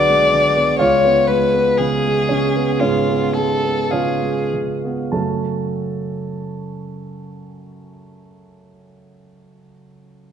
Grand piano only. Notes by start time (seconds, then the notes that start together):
Already playing: B1 D3 B3 D4 F#4 G#4 D5 F#5 G#5
0.10 G#3
0.34 D3
0.57 B3
0.79 C#2 F4 C#5 F5
1.05 B3
1.30 G#3
1.55 B3
1.80 C#3
2.05 G#3
2.29 C#3 C#4 C#5
2.56 B3
2.81 G#2 C#4 G#4 C#5
3.10 B3
3.37 G#3
3.65 B3
3.91 C#3 F4 C#5 F5
4.23 G#3
4.54 C#3
4.85 B3
5.12 F#2 C#3 A3 C#4 F#4 A4 A5